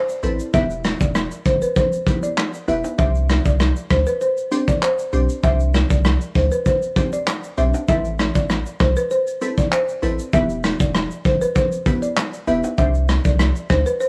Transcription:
Already playing: marimba C5
0.09 shaker
0.23 sub bass A1, synth pluck C4 E4 A4 B4, closed hi-hat, shaker
0.39 shaker
0.54 sub bass E1, synth pluck B3 E4 G4 B4, marimba E5, kick, shaker
0.70 shaker
0.84 cross-stick, closed hi-hat, shaker
1.00 sub bass E1, marimba D5, kick, shaker
1.15 cross-stick, shaker
1.31 shaker
1.45 sub bass G1, marimba C5, kick, closed hi-hat, shaker
1.62 marimba B4, shaker
1.76 marimba C5, kick, shaker
1.92 shaker
2.06 synth pluck B3 E4 G4 B4, kick, closed hi-hat, shaker
2.23 marimba D5, shaker
2.37 cross-stick, clap, shaker
2.54 shaker
2.68 sub bass E1, synth pluck B3 E4 G4 B4, marimba E5, closed hi-hat, shaker
2.84 high timbale, shaker
2.98 sub bass C2, synth pluck C4 D4 G4 C5, marimba E5, kick, shaker
3.15 shaker
3.29 cross-stick, closed hi-hat, shaker
3.45 sub bass C2, marimba D5, kick, shaker
3.60 cross-stick, shaker
3.76 shaker
3.90 sub bass D2, marimba C5, kick, cross-stick, closed hi-hat, shaker
4.07 marimba B4, shaker
4.21 marimba C5, shaker
4.37 shaker
4.51 synth pluck C4 D4 G4 C5, closed hi-hat, shaker
4.68 marimba D5, kick, shaker
4.82 marimba C5, clap, shaker
4.99 shaker
5.13 sub bass B1, synth pluck C4 D4 G4 C5, closed hi-hat, shaker
5.29 shaker
5.43 sub bass C2, synth pluck C4 D4 G4 C5, marimba E5, kick, shaker
5.60 shaker
5.74 cross-stick, closed hi-hat, shaker
5.90 sub bass C2, marimba D5, kick, shaker
6.05 cross-stick, shaker
6.21 shaker
6.35 sub bass D2, marimba C5, kick, closed hi-hat, shaker
6.52 marimba B4, shaker
6.66 marimba C5, kick, shaker
6.82 shaker
6.96 synth pluck C4 D4 G4 C5, kick, closed hi-hat, shaker
7.13 marimba D5, shaker
7.27 cross-stick, clap, shaker
7.43 shaker
7.57 sub bass B1, synth pluck C4 D4 G4 C5, marimba E5, closed hi-hat, shaker
7.74 high timbale, shaker
7.88 sub bass A1, synth pluck C4 E4 A4 B4, marimba E5, kick, shaker
8.05 shaker
8.19 cross-stick, closed hi-hat, shaker
8.35 sub bass A1, marimba D5, kick, shaker
8.49 cross-stick, shaker
8.66 shaker
8.80 sub bass C2, marimba C5, kick, cross-stick, closed hi-hat, shaker
8.96 marimba B4, shaker
9.11 marimba C5, shaker
9.27 shaker
9.41 synth pluck C4 E4 A4 B4, closed hi-hat, shaker
9.58 marimba D5, kick, shaker
9.72 marimba C5, clap, shaker
9.88 shaker
10.02 sub bass A1, synth pluck C4 E4 A4 B4, closed hi-hat, shaker
10.19 shaker
10.33 sub bass E1, synth pluck B3 E4 G4 B4, marimba E5, kick, shaker
10.50 shaker
10.64 cross-stick, closed hi-hat, shaker
10.80 sub bass E1, marimba D5, kick, shaker
10.94 cross-stick, shaker
11.11 shaker
11.25 sub bass G1, marimba C5, kick, closed hi-hat, shaker
11.41 marimba B4, shaker
11.56 marimba C5, kick, shaker
11.72 shaker
11.86 synth pluck B3 E4 G4 B4, kick, closed hi-hat, shaker
12.02 marimba D5, shaker
12.17 cross-stick, clap, shaker
12.33 shaker
12.47 sub bass E1, synth pluck B3 E4 G4 B4, marimba E5, closed hi-hat, shaker
12.64 high timbale, shaker
12.78 sub bass C2, synth pluck C4 D4 G4 C5, marimba E5, kick, shaker
12.94 shaker
13.09 cross-stick, closed hi-hat, shaker
13.25 sub bass C2, marimba D5, kick, shaker
13.39 cross-stick, shaker
13.56 shaker
13.70 sub bass D2, marimba C5, kick, cross-stick, closed hi-hat, shaker
13.86 marimba B4, shaker
14.01 marimba C5, shaker

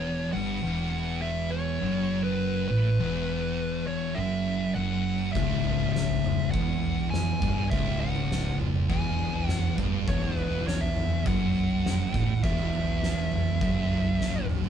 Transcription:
Already playing: fingered electric bass E1, distorted electric guitar E2, lead electric guitar C#5
0.33 fingered electric bass G1, distorted electric guitar G2, lead electric guitar F#5
0.63 fingered electric bass E1, distorted electric guitar E2
1.22 lead electric guitar E5
1.51 lead electric guitar C#5
1.81 fingered electric bass F#1, distorted electric guitar F#2
2.24 lead electric guitar B4
2.68 fingered electric bass A1, distorted electric guitar A2, lead electric guitar B4
2.99 fingered electric bass E1, distorted electric guitar E2
3.87 lead electric guitar C#5
4.15 fingered electric bass F#1, distorted electric guitar F#2, lead electric guitar E5
4.75 fingered electric bass F#1, distorted electric guitar F#2, lead electric guitar F#5
5.33 fingered electric bass C#1, distorted electric guitar C#2, lead electric guitar E5, kick, floor tom
5.50 floor tom
5.65 floor tom
5.80 floor tom
5.93 lead electric guitar E5, snare
6.10 floor tom
6.24 floor tom, mid tom
6.40 mid tom
6.51 fingered electric bass E1, distorted electric guitar E2, lead electric guitar F#5, kick, floor tom
7.10 lead electric guitar G#5, snare, mid tom
7.42 fingered electric bass G1, distorted electric guitar G2, kick, floor tom
7.70 fingered electric bass C#1, distorted electric guitar C#2, lead electric guitar E5, kick, floor tom
7.86 floor tom
8.01 lead electric guitar F#5, floor tom
8.16 floor tom
8.32 snare
8.45 floor tom
8.60 floor tom, mid tom
8.74 mid tom
8.89 fingered electric bass E1, distorted electric guitar E2, lead electric guitar G#5, kick, floor tom
9.19 floor tom
9.48 lead electric guitar F#5, snare, mid tom
9.78 fingered electric bass G1, distorted electric guitar G2, kick, floor tom, mid tom
10.08 fingered electric bass E1, distorted electric guitar E2, lead electric guitar C#5, kick, floor tom
10.22 lead electric guitar B4, floor tom
10.37 floor tom
10.52 floor tom
10.67 lead electric guitar C#5, snare
10.81 lead electric guitar E5, floor tom
10.97 floor tom, mid tom
11.12 mid tom
11.25 fingered electric bass F#1, distorted electric guitar F#2, lead electric guitar F#5, kick, floor tom
11.85 snare, mid tom
12.14 fingered electric bass A1, distorted electric guitar A2, kick, floor tom
12.43 fingered electric bass E1, distorted electric guitar E2, lead electric guitar E5, kick, floor tom
12.58 floor tom
12.73 floor tom
12.87 floor tom
13.04 snare
13.17 floor tom
13.32 floor tom, mid tom
13.46 mid tom
13.61 fingered electric bass F#1, distorted electric guitar F#2, kick, floor tom
13.90 floor tom
14.20 fingered electric bass F#1, distorted electric guitar F#2, snare
14.35 high tom
14.49 mid tom
14.64 floor tom

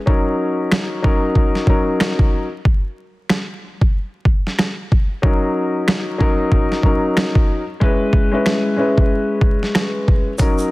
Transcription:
0.06 upright piano F#3 C#4 D#4 A#4, kick
0.71 cross-stick, snare
1.02 upright piano F#3 C#4 D#4 A#4, kick
1.35 kick
1.55 snare
1.67 upright piano F#3 C#4 D#4 A#4, kick
2.00 cross-stick, snare
2.19 kick
2.65 kick
3.30 cross-stick, snare
3.81 kick
4.25 kick
4.47 snare
4.59 cross-stick, snare
4.92 kick
5.22 upright piano F#3 C#4 D#4 A#4, kick
5.88 cross-stick, snare
6.18 upright piano F#3 C#4 D#4 A#4, kick
6.52 kick
6.72 snare
6.83 upright piano F#3 C#4 D#4 A#4, kick
7.17 cross-stick, snare
7.35 kick
7.80 upright piano G#3 C#4 E4 B4, kick
8.13 kick
8.31 upright piano G#3 C#4 E4 B4
8.46 cross-stick, snare
8.77 upright piano G#3 C#4 E4 B4
8.98 kick
9.41 kick
9.63 snare
9.75 cross-stick, snare
10.08 kick
10.38 upright piano F#3 C#4 D#4 A#4, kick, closed hi-hat, shaker
10.58 shaker

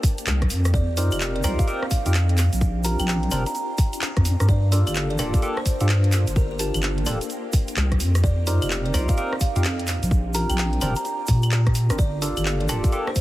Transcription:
Already playing: string machine A#3 D4 G4 A5
0.03 kick, open hi-hat, shaker
0.18 closed hi-hat, shaker
0.27 wobble bass C2, clap, shaker
0.42 kick, cross-stick, closed hi-hat
0.50 wobble bass F2, open hi-hat, shaker
0.65 cross-stick, closed hi-hat, shaker
0.73 string machine C4 D#4, kalimba D5, kick, shaker
0.97 tine electric piano C4 D#4 F4 G4 A#4, kalimba D5, open hi-hat, shaker
1.11 wobble bass F1, kalimba D5, closed hi-hat, claves, shaker
1.20 clap, shaker
1.36 kalimba D5, closed hi-hat
1.43 wobble bass C2, tine electric piano C4 D#4 F4 G4 A#4, kalimba D5, cross-stick, open hi-hat, claves, shaker
1.59 kalimba F5, kick, closed hi-hat, shaker
1.67 tine electric piano C4 D#4 F4 G4 A#4, closed hi-hat, shaker
1.83 cross-stick
1.91 kalimba F5, kick, open hi-hat, shaker
2.06 wobble bass F2, tine electric piano C4 D#4 F4 G4 A#4, closed hi-hat, shaker
2.14 clap, shaker
2.29 closed hi-hat
2.38 clap, open hi-hat, shaker
2.52 wobble bass A#1, closed hi-hat, shaker
2.61 string machine D4 F4, kick, shaker
2.84 tine electric piano C4 D4 F4 G4 A#4, kalimba A#5, open hi-hat, shaker
2.99 wobble bass A#1, kalimba G5, closed hi-hat, claves, shaker
3.08 kalimba G5, clap, shaker
3.23 closed hi-hat
3.31 wobble bass F1, tine electric piano C4 D4 F4 G4 A#4, open hi-hat, claves, shaker
3.46 kalimba A#5, closed hi-hat, shaker
3.55 kalimba A#5, closed hi-hat, shaker
3.78 kick, open hi-hat, shaker
3.93 closed hi-hat, shaker
4.02 clap, shaker
4.17 wobble bass F2, kick, cross-stick, closed hi-hat
4.25 open hi-hat, shaker
4.40 wobble bass G2, tine electric piano C4 D4 F4 G4 A#4, cross-stick, closed hi-hat, shaker
4.49 string machine A#3 A4, kalimba D5, kick, shaker
4.72 tine electric piano A#3 D4 F4 G4 A4, kalimba D5, open hi-hat, shaker
4.87 wobble bass G1, kalimba D5, closed hi-hat, claves, shaker
4.95 clap, shaker
5.10 kalimba D5, closed hi-hat
5.18 wobble bass D1, tine electric piano A#3 D4 F4 G4 A4, kalimba D5, cross-stick, open hi-hat, claves, shaker
5.34 kick, closed hi-hat, shaker
5.42 tine electric piano A#3 D4 F4 G4 A4, closed hi-hat, shaker
5.57 kalimba C5, cross-stick
5.65 kalimba C5, kick, open hi-hat, shaker
5.80 wobble bass G2, tine electric piano A#3 D4 F4 G4 A4, closed hi-hat, shaker
5.89 clap, shaker
6.04 closed hi-hat
6.12 clap, open hi-hat, shaker
6.27 wobble bass G1, closed hi-hat, shaker
6.36 string machine G4, kalimba A#4, kick, shaker
6.51 kalimba A#4
6.59 tine electric piano A#3 D4 F4 G4 A5, kalimba A#4, open hi-hat, shaker
6.74 wobble bass G1, closed hi-hat, claves, shaker
6.82 clap, shaker
6.98 closed hi-hat
7.06 wobble bass D1, tine electric piano A#3 D4 F4 G4 A4, open hi-hat, claves, shaker
7.21 closed hi-hat, shaker
7.30 closed hi-hat, shaker
7.53 kick, open hi-hat, shaker
7.68 closed hi-hat, shaker
7.76 wobble bass C2, clap, shaker
7.92 kick, cross-stick, closed hi-hat
8.00 wobble bass F2, open hi-hat, shaker
8.15 cross-stick, closed hi-hat, shaker
8.23 string machine C4 D#4, kalimba D5, kick, shaker
8.47 tine electric piano C4 D#4 F4 G4 A#4, kalimba D5, open hi-hat, shaker
8.62 wobble bass F1, kalimba D5, closed hi-hat, claves, shaker
8.70 clap, shaker
8.85 kalimba D5, closed hi-hat
8.94 wobble bass C2, tine electric piano C4 D#4 F4 G4 A#4, kalimba D5, cross-stick, open hi-hat, claves, shaker
9.09 kalimba F5, kick, closed hi-hat, shaker
9.17 tine electric piano C4 D#4 F4 G4 A#4, closed hi-hat, shaker
9.33 cross-stick
9.40 kalimba F5, kick, open hi-hat, shaker
9.56 wobble bass F2, tine electric piano C4 D#4 F4 G4 A#4, closed hi-hat, shaker
9.64 clap, shaker
9.79 closed hi-hat
9.87 clap, open hi-hat, shaker
10.03 wobble bass A#1, closed hi-hat, shaker
10.11 string machine D4 F4 G4, kick, shaker
10.34 tine electric piano C4 D4 F4 G4 A#4, kalimba A#5, open hi-hat, shaker
10.49 wobble bass A#1, kalimba G5, closed hi-hat, claves, shaker
10.58 clap, shaker
10.73 closed hi-hat
10.81 wobble bass F1, tine electric piano C4 D4 F4 G4 A#4, open hi-hat, claves, shaker
10.96 kalimba A#5, closed hi-hat, shaker
11.05 kalimba A#5, closed hi-hat, shaker
11.27 wobble bass A#2, kick, open hi-hat, shaker
11.42 closed hi-hat, claves, shaker
11.51 clap, shaker
11.67 kick, cross-stick, closed hi-hat
11.75 open hi-hat, shaker
11.90 wobble bass G1, tine electric piano C4 D4 F4 G4 A#4, cross-stick, closed hi-hat, shaker
11.98 string machine A#3 A4, kalimba D5, kick, shaker
12.22 tine electric piano A#3 D4 F4 G4 A4, kalimba D5, open hi-hat, shaker
12.37 wobble bass G1, kalimba D5, closed hi-hat, claves, shaker
12.45 clap, shaker
12.60 kalimba D5, closed hi-hat
12.69 wobble bass D1, tine electric piano A#3 D4 F4 G4 A4, kalimba D5, cross-stick, open hi-hat, claves, shaker
12.84 kick, closed hi-hat, shaker
12.92 tine electric piano A#3 D4 F4 G4 A4, closed hi-hat, shaker
13.07 kalimba C5, cross-stick
13.16 kalimba C5, kick, open hi-hat, shaker

